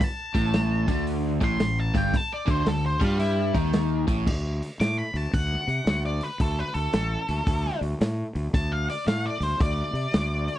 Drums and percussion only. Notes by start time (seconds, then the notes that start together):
0.01 kick, open hi-hat
0.35 kick, open hi-hat
0.54 snare, open hi-hat
0.88 kick, open hi-hat
1.07 open hi-hat
1.41 kick, snare, open hi-hat
1.60 snare, open hi-hat
1.95 kick, open hi-hat
2.14 kick, open hi-hat
2.48 kick, open hi-hat
2.66 snare, open hi-hat
3.01 kick, open hi-hat
3.20 open hi-hat
3.55 kick, open hi-hat
3.65 snare
3.73 snare, open hi-hat
4.08 kick, open hi-hat
4.27 kick, crash
4.62 open hi-hat
4.81 snare, open hi-hat
5.16 open hi-hat
5.34 kick, open hi-hat
5.53 snare
5.69 open hi-hat
5.87 snare, open hi-hat
6.21 open hi-hat
6.40 kick, open hi-hat
6.74 open hi-hat
6.93 snare, open hi-hat
7.28 snare, open hi-hat
7.47 kick, open hi-hat
7.65 snare
7.83 open hi-hat
8.01 snare, open hi-hat
8.35 open hi-hat
8.54 kick, open hi-hat
8.89 open hi-hat
9.07 snare, open hi-hat
9.42 snare, open hi-hat
9.60 kick, open hi-hat
9.95 open hi-hat
10.14 snare, open hi-hat
10.48 open hi-hat